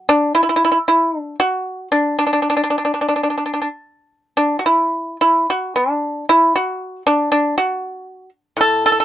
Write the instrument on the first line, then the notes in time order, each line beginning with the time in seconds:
pipa
Already playing: F#3
0.09 D4
0.35 E4
0.43 E4
0.49 E4
0.56 E4
0.65 E4
0.72 E4
0.88 E4
1.18 D4
1.40 F#4
1.92 D4
2.19 D4
2.27 D4
2.33 D4
2.42 D4
2.50 D4
2.57 D4
2.64 D4
2.70 D4
2.78 D4
2.85 D4
2.94 D4
3.01 D4
3.09 D4
3.16 D4
3.23 D4
3.30 D4
3.38 D4
3.46 D4
3.54 D4
3.62 D4
4.37 D4
4.59 F#4
4.66 E4
5.21 E4
5.50 F#4
5.76 D4
6.29 E4
6.56 F#4
7.07 D4
7.32 D4
7.58 F#4
8.57 A2
8.61 A4
8.86 A4
8.92 A4
9.00 A4